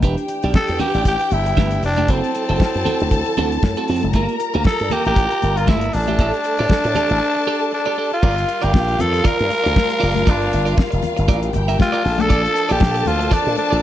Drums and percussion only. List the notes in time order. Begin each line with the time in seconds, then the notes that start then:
0.02 kick, closed hi-hat, muted conga
0.18 closed hi-hat
0.28 closed hi-hat
0.42 closed hi-hat
0.54 kick, snare, high conga
0.68 closed hi-hat
0.80 closed hi-hat, muted conga, low conga
0.94 closed hi-hat
1.05 kick, closed hi-hat, muted conga
1.19 closed hi-hat
1.31 closed hi-hat, muted conga
1.46 closed hi-hat
1.57 kick, snare, high conga
1.71 closed hi-hat
1.83 open hi-hat
1.97 closed hi-hat, high conga
2.08 kick, closed hi-hat, muted conga
2.24 closed hi-hat
2.35 closed hi-hat
2.49 closed hi-hat
2.60 kick, snare, high conga
2.74 closed hi-hat
2.86 closed hi-hat, muted conga, low conga
3.00 closed hi-hat
3.11 kick, closed hi-hat, muted conga, low conga
3.25 closed hi-hat
3.37 closed hi-hat, muted conga, low conga
3.52 closed hi-hat
3.63 kick, snare, high conga
3.76 closed hi-hat
3.88 open hi-hat
4.02 closed hi-hat, high conga
4.13 kick, closed hi-hat, muted conga
4.29 closed hi-hat
4.40 closed hi-hat
4.54 closed hi-hat
4.64 kick, snare, high conga
4.79 closed hi-hat
4.90 closed hi-hat, muted conga, low conga
5.05 closed hi-hat
5.16 kick, closed hi-hat, muted conga
5.31 closed hi-hat
5.42 closed hi-hat, muted conga
5.57 closed hi-hat
5.67 kick, snare, high conga
5.81 closed hi-hat
5.93 open hi-hat
6.07 closed hi-hat, high conga
6.19 kick, closed hi-hat, muted conga
6.34 closed hi-hat
6.44 closed hi-hat
6.58 closed hi-hat
6.69 kick, snare, high conga
6.84 closed hi-hat
6.95 closed hi-hat, muted conga, low conga
7.10 closed hi-hat
8.23 kick, crash, muted conga
8.38 closed hi-hat
8.49 closed hi-hat
8.62 closed hi-hat
8.74 kick, snare, high conga
8.88 closed hi-hat
8.99 closed hi-hat, muted conga, low conga
9.14 closed hi-hat
9.25 kick, closed hi-hat, low conga
9.39 closed hi-hat
9.51 closed hi-hat, muted conga
9.66 closed hi-hat
9.76 kick, snare, high conga
9.90 closed hi-hat
10.02 open hi-hat
10.15 closed hi-hat, high conga
10.27 kick, closed hi-hat, muted conga
10.42 closed hi-hat
10.53 closed hi-hat
10.67 closed hi-hat
10.78 kick, snare, high conga
10.92 closed hi-hat
11.03 closed hi-hat, muted conga, low conga
11.17 closed hi-hat
11.29 kick, closed hi-hat, muted conga, low conga
11.43 closed hi-hat
11.53 closed hi-hat, muted conga, low conga
11.69 closed hi-hat
11.79 kick, snare, high conga
11.93 closed hi-hat
12.05 snare, open hi-hat
12.19 closed hi-hat, high conga
12.30 kick, closed hi-hat, muted conga
12.45 closed hi-hat
12.56 closed hi-hat
12.70 closed hi-hat
12.80 kick, snare, high conga
12.95 closed hi-hat
13.06 closed hi-hat, muted conga, low conga
13.21 closed hi-hat
13.32 kick, closed hi-hat, muted conga, low conga
13.46 closed hi-hat
13.57 closed hi-hat, muted conga
13.72 closed hi-hat